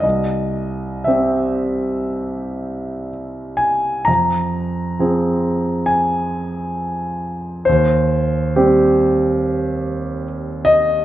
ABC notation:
X:1
M:4/4
L:1/8
Q:1/4=67
K:Cphr
V:1 name="Grand piano"
e2 =e4 z a | b4 a4 | c6 z e |]
V:2 name="Grand piano"
C,,2 [G,CG]6 | F,,2 [F,CA]6 | E,,2 [G,CG]6 |]